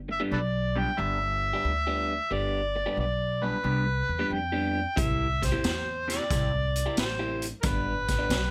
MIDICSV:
0, 0, Header, 1, 6, 480
1, 0, Start_track
1, 0, Tempo, 666667
1, 1662, Time_signature, 4, 2, 24, 8
1, 6125, End_track
2, 0, Start_track
2, 0, Title_t, "Harmonica"
2, 0, Program_c, 0, 22
2, 85, Note_on_c, 0, 76, 91
2, 151, Note_off_c, 0, 76, 0
2, 235, Note_on_c, 0, 69, 64
2, 235, Note_on_c, 0, 71, 64
2, 235, Note_on_c, 0, 74, 92
2, 279, Note_off_c, 0, 69, 0
2, 287, Note_off_c, 0, 71, 0
2, 568, Note_on_c, 0, 79, 105
2, 579, Note_off_c, 0, 74, 0
2, 721, Note_on_c, 0, 76, 109
2, 731, Note_off_c, 0, 79, 0
2, 1677, Note_on_c, 0, 74, 105
2, 1687, Note_off_c, 0, 76, 0
2, 2149, Note_off_c, 0, 74, 0
2, 2159, Note_on_c, 0, 74, 85
2, 2476, Note_on_c, 0, 71, 97
2, 2487, Note_off_c, 0, 74, 0
2, 3119, Note_on_c, 0, 79, 90
2, 3130, Note_off_c, 0, 71, 0
2, 3594, Note_on_c, 0, 76, 108
2, 3604, Note_off_c, 0, 79, 0
2, 3919, Note_on_c, 0, 72, 92
2, 3930, Note_off_c, 0, 76, 0
2, 4389, Note_off_c, 0, 72, 0
2, 4393, Note_on_c, 0, 74, 100
2, 4996, Note_off_c, 0, 74, 0
2, 5029, Note_on_c, 0, 72, 84
2, 5355, Note_off_c, 0, 72, 0
2, 5478, Note_on_c, 0, 70, 53
2, 5514, Note_on_c, 0, 71, 95
2, 5524, Note_off_c, 0, 70, 0
2, 6125, Note_off_c, 0, 71, 0
2, 6125, End_track
3, 0, Start_track
3, 0, Title_t, "Clean electric guitar"
3, 0, Program_c, 1, 27
3, 142, Note_on_c, 1, 67, 94
3, 144, Note_on_c, 1, 62, 99
3, 148, Note_on_c, 1, 59, 86
3, 151, Note_on_c, 1, 55, 72
3, 269, Note_off_c, 1, 67, 0
3, 270, Note_off_c, 1, 62, 0
3, 272, Note_off_c, 1, 59, 0
3, 274, Note_off_c, 1, 55, 0
3, 544, Note_on_c, 1, 55, 89
3, 547, Note_on_c, 1, 59, 83
3, 550, Note_on_c, 1, 62, 93
3, 553, Note_on_c, 1, 67, 96
3, 646, Note_off_c, 1, 55, 0
3, 647, Note_off_c, 1, 59, 0
3, 649, Note_off_c, 1, 62, 0
3, 651, Note_off_c, 1, 67, 0
3, 699, Note_on_c, 1, 55, 87
3, 702, Note_on_c, 1, 59, 92
3, 704, Note_on_c, 1, 62, 99
3, 708, Note_on_c, 1, 67, 94
3, 856, Note_off_c, 1, 67, 0
3, 858, Note_off_c, 1, 62, 0
3, 862, Note_off_c, 1, 59, 0
3, 863, Note_off_c, 1, 55, 0
3, 1104, Note_on_c, 1, 67, 95
3, 1110, Note_on_c, 1, 62, 96
3, 1111, Note_on_c, 1, 59, 75
3, 1112, Note_on_c, 1, 55, 82
3, 1230, Note_off_c, 1, 67, 0
3, 1233, Note_off_c, 1, 62, 0
3, 1234, Note_off_c, 1, 55, 0
3, 1234, Note_off_c, 1, 59, 0
3, 1345, Note_on_c, 1, 67, 96
3, 1349, Note_on_c, 1, 62, 85
3, 1351, Note_on_c, 1, 59, 82
3, 1353, Note_on_c, 1, 55, 77
3, 1530, Note_off_c, 1, 67, 0
3, 1532, Note_off_c, 1, 62, 0
3, 1533, Note_off_c, 1, 59, 0
3, 1534, Note_off_c, 1, 55, 0
3, 1660, Note_on_c, 1, 55, 77
3, 1664, Note_on_c, 1, 59, 89
3, 1667, Note_on_c, 1, 62, 83
3, 1668, Note_on_c, 1, 67, 92
3, 1872, Note_off_c, 1, 55, 0
3, 1874, Note_off_c, 1, 59, 0
3, 1876, Note_off_c, 1, 62, 0
3, 1876, Note_off_c, 1, 67, 0
3, 2059, Note_on_c, 1, 67, 91
3, 2062, Note_on_c, 1, 62, 83
3, 2066, Note_on_c, 1, 59, 87
3, 2067, Note_on_c, 1, 55, 84
3, 2188, Note_off_c, 1, 67, 0
3, 2190, Note_off_c, 1, 62, 0
3, 2191, Note_off_c, 1, 59, 0
3, 2192, Note_off_c, 1, 55, 0
3, 2462, Note_on_c, 1, 55, 90
3, 2467, Note_on_c, 1, 59, 81
3, 2467, Note_on_c, 1, 62, 93
3, 2471, Note_on_c, 1, 67, 87
3, 2565, Note_off_c, 1, 55, 0
3, 2567, Note_off_c, 1, 62, 0
3, 2568, Note_off_c, 1, 59, 0
3, 2569, Note_off_c, 1, 67, 0
3, 2616, Note_on_c, 1, 55, 89
3, 2620, Note_on_c, 1, 59, 87
3, 2620, Note_on_c, 1, 62, 97
3, 2624, Note_on_c, 1, 67, 91
3, 2769, Note_off_c, 1, 67, 0
3, 2775, Note_off_c, 1, 62, 0
3, 2776, Note_off_c, 1, 59, 0
3, 2781, Note_off_c, 1, 55, 0
3, 3017, Note_on_c, 1, 67, 85
3, 3020, Note_on_c, 1, 62, 86
3, 3023, Note_on_c, 1, 59, 81
3, 3024, Note_on_c, 1, 55, 70
3, 3147, Note_off_c, 1, 67, 0
3, 3148, Note_off_c, 1, 62, 0
3, 3150, Note_off_c, 1, 59, 0
3, 3151, Note_off_c, 1, 55, 0
3, 3255, Note_on_c, 1, 67, 90
3, 3258, Note_on_c, 1, 62, 99
3, 3263, Note_on_c, 1, 55, 77
3, 3263, Note_on_c, 1, 59, 90
3, 3445, Note_off_c, 1, 67, 0
3, 3447, Note_off_c, 1, 62, 0
3, 3449, Note_off_c, 1, 55, 0
3, 3449, Note_off_c, 1, 59, 0
3, 3572, Note_on_c, 1, 48, 75
3, 3574, Note_on_c, 1, 60, 80
3, 3576, Note_on_c, 1, 64, 81
3, 3580, Note_on_c, 1, 67, 81
3, 3788, Note_off_c, 1, 48, 0
3, 3789, Note_off_c, 1, 60, 0
3, 3790, Note_off_c, 1, 64, 0
3, 3792, Note_off_c, 1, 67, 0
3, 3974, Note_on_c, 1, 67, 89
3, 3977, Note_on_c, 1, 64, 85
3, 3980, Note_on_c, 1, 60, 79
3, 3981, Note_on_c, 1, 48, 71
3, 4105, Note_off_c, 1, 67, 0
3, 4107, Note_off_c, 1, 64, 0
3, 4108, Note_off_c, 1, 60, 0
3, 4109, Note_off_c, 1, 48, 0
3, 4376, Note_on_c, 1, 48, 81
3, 4381, Note_on_c, 1, 60, 84
3, 4383, Note_on_c, 1, 64, 85
3, 4385, Note_on_c, 1, 67, 98
3, 4482, Note_off_c, 1, 48, 0
3, 4484, Note_off_c, 1, 60, 0
3, 4486, Note_off_c, 1, 64, 0
3, 4487, Note_off_c, 1, 67, 0
3, 4533, Note_on_c, 1, 48, 85
3, 4537, Note_on_c, 1, 60, 81
3, 4538, Note_on_c, 1, 64, 88
3, 4542, Note_on_c, 1, 67, 93
3, 4692, Note_off_c, 1, 67, 0
3, 4696, Note_off_c, 1, 64, 0
3, 4699, Note_off_c, 1, 48, 0
3, 4699, Note_off_c, 1, 60, 0
3, 4938, Note_on_c, 1, 67, 87
3, 4943, Note_on_c, 1, 64, 86
3, 4944, Note_on_c, 1, 60, 73
3, 4948, Note_on_c, 1, 48, 73
3, 5067, Note_off_c, 1, 67, 0
3, 5070, Note_off_c, 1, 60, 0
3, 5070, Note_off_c, 1, 64, 0
3, 5072, Note_off_c, 1, 48, 0
3, 5178, Note_on_c, 1, 67, 93
3, 5182, Note_on_c, 1, 64, 94
3, 5184, Note_on_c, 1, 60, 83
3, 5187, Note_on_c, 1, 48, 84
3, 5367, Note_off_c, 1, 67, 0
3, 5369, Note_off_c, 1, 60, 0
3, 5369, Note_off_c, 1, 64, 0
3, 5371, Note_off_c, 1, 48, 0
3, 5493, Note_on_c, 1, 43, 81
3, 5496, Note_on_c, 1, 55, 83
3, 5500, Note_on_c, 1, 59, 91
3, 5502, Note_on_c, 1, 62, 90
3, 5708, Note_off_c, 1, 43, 0
3, 5710, Note_off_c, 1, 55, 0
3, 5711, Note_off_c, 1, 59, 0
3, 5712, Note_off_c, 1, 62, 0
3, 5893, Note_on_c, 1, 62, 99
3, 5898, Note_on_c, 1, 59, 87
3, 5901, Note_on_c, 1, 55, 82
3, 5903, Note_on_c, 1, 43, 70
3, 6024, Note_off_c, 1, 62, 0
3, 6027, Note_off_c, 1, 59, 0
3, 6028, Note_off_c, 1, 55, 0
3, 6029, Note_off_c, 1, 43, 0
3, 6125, End_track
4, 0, Start_track
4, 0, Title_t, "Upright bass"
4, 0, Program_c, 2, 32
4, 0, Note_on_c, 2, 31, 84
4, 131, Note_off_c, 2, 31, 0
4, 227, Note_on_c, 2, 35, 91
4, 612, Note_off_c, 2, 35, 0
4, 709, Note_on_c, 2, 31, 91
4, 1093, Note_off_c, 2, 31, 0
4, 1186, Note_on_c, 2, 38, 91
4, 1571, Note_off_c, 2, 38, 0
4, 1664, Note_on_c, 2, 31, 87
4, 2050, Note_off_c, 2, 31, 0
4, 2140, Note_on_c, 2, 35, 84
4, 2528, Note_off_c, 2, 35, 0
4, 2621, Note_on_c, 2, 36, 97
4, 2883, Note_off_c, 2, 36, 0
4, 2945, Note_on_c, 2, 40, 82
4, 3071, Note_off_c, 2, 40, 0
4, 3098, Note_on_c, 2, 41, 81
4, 3487, Note_off_c, 2, 41, 0
4, 3580, Note_on_c, 2, 36, 81
4, 3967, Note_off_c, 2, 36, 0
4, 4062, Note_on_c, 2, 40, 84
4, 4449, Note_off_c, 2, 40, 0
4, 4540, Note_on_c, 2, 36, 91
4, 4928, Note_off_c, 2, 36, 0
4, 5021, Note_on_c, 2, 33, 85
4, 5408, Note_off_c, 2, 33, 0
4, 5498, Note_on_c, 2, 31, 85
4, 5886, Note_off_c, 2, 31, 0
4, 5974, Note_on_c, 2, 35, 90
4, 6125, Note_off_c, 2, 35, 0
4, 6125, End_track
5, 0, Start_track
5, 0, Title_t, "Muted clean electric guitar strokes"
5, 61, Note_on_c, 9, 29, 45
5, 133, Note_off_c, 9, 29, 0
5, 865, Note_on_c, 9, 29, 49
5, 937, Note_off_c, 9, 29, 0
5, 1983, Note_on_c, 9, 29, 45
5, 2055, Note_off_c, 9, 29, 0
5, 2778, Note_on_c, 9, 29, 45
5, 2850, Note_off_c, 9, 29, 0
5, 3901, Note_on_c, 9, 29, 46
5, 3973, Note_off_c, 9, 29, 0
5, 4701, Note_on_c, 9, 29, 51
5, 4773, Note_off_c, 9, 29, 0
5, 5819, Note_on_c, 9, 29, 50
5, 5891, Note_off_c, 9, 29, 0
5, 6125, End_track
6, 0, Start_track
6, 0, Title_t, "Drums"
6, 3580, Note_on_c, 9, 36, 108
6, 3582, Note_on_c, 9, 42, 83
6, 3652, Note_off_c, 9, 36, 0
6, 3654, Note_off_c, 9, 42, 0
6, 3906, Note_on_c, 9, 36, 72
6, 3908, Note_on_c, 9, 42, 55
6, 3913, Note_on_c, 9, 38, 30
6, 3978, Note_off_c, 9, 36, 0
6, 3980, Note_off_c, 9, 42, 0
6, 3985, Note_off_c, 9, 38, 0
6, 4060, Note_on_c, 9, 42, 78
6, 4066, Note_on_c, 9, 38, 107
6, 4132, Note_off_c, 9, 42, 0
6, 4138, Note_off_c, 9, 38, 0
6, 4389, Note_on_c, 9, 42, 67
6, 4394, Note_on_c, 9, 38, 32
6, 4461, Note_off_c, 9, 42, 0
6, 4466, Note_off_c, 9, 38, 0
6, 4540, Note_on_c, 9, 36, 112
6, 4540, Note_on_c, 9, 42, 82
6, 4546, Note_on_c, 9, 38, 33
6, 4612, Note_off_c, 9, 36, 0
6, 4612, Note_off_c, 9, 42, 0
6, 4618, Note_off_c, 9, 38, 0
6, 4864, Note_on_c, 9, 42, 66
6, 4936, Note_off_c, 9, 42, 0
6, 5018, Note_on_c, 9, 42, 87
6, 5024, Note_on_c, 9, 38, 115
6, 5090, Note_off_c, 9, 42, 0
6, 5096, Note_off_c, 9, 38, 0
6, 5342, Note_on_c, 9, 42, 66
6, 5414, Note_off_c, 9, 42, 0
6, 5493, Note_on_c, 9, 42, 89
6, 5498, Note_on_c, 9, 36, 109
6, 5499, Note_on_c, 9, 38, 31
6, 5565, Note_off_c, 9, 42, 0
6, 5570, Note_off_c, 9, 36, 0
6, 5571, Note_off_c, 9, 38, 0
6, 5820, Note_on_c, 9, 42, 64
6, 5823, Note_on_c, 9, 36, 76
6, 5826, Note_on_c, 9, 38, 30
6, 5892, Note_off_c, 9, 42, 0
6, 5895, Note_off_c, 9, 36, 0
6, 5898, Note_off_c, 9, 38, 0
6, 5977, Note_on_c, 9, 42, 82
6, 5983, Note_on_c, 9, 38, 105
6, 6049, Note_off_c, 9, 42, 0
6, 6055, Note_off_c, 9, 38, 0
6, 6125, End_track
0, 0, End_of_file